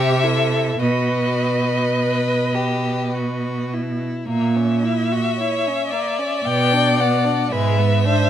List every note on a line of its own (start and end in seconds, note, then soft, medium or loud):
0.00 0.77 C3 loud
0.00 0.25 G4 medium
0.00 0.26 G4 medium
0.00 0.81 E5 loud
0.23 0.80 E4 medium
0.23 0.81 A4 medium
0.80 4.03 B2 medium
0.80 1.84 F#4 medium
0.80 3.68 B4 medium
0.80 3.71 D#5 medium
1.98 2.56 B4 medium
2.55 3.17 G4 medium
3.15 3.75 F#4 soft
3.74 4.28 E4 soft
4.27 5.19 A#2 medium
4.27 4.57 A#3 medium
4.27 6.47 E5 medium
4.56 4.84 C#4 medium
4.83 5.13 E4 medium
5.12 5.42 F#4 medium
5.38 5.69 E4 medium
5.38 5.88 C#5 medium
5.67 5.93 C#4 medium
5.91 6.20 A#3 medium
5.91 7.53 D5 medium
6.18 6.45 C#4 medium
6.45 7.34 B2 medium
6.45 6.74 B3 medium
6.45 7.01 G5 loud
6.72 7.01 D4 medium
6.99 7.26 B3 medium
6.99 7.51 F#5 medium
7.24 7.51 D4 medium
7.51 8.30 G#2 medium
7.51 7.81 G#3 medium
7.51 8.04 B4 medium
7.51 8.30 E5 loud
7.79 8.07 B3 medium
8.04 8.30 D4 medium
8.04 8.30 C5 medium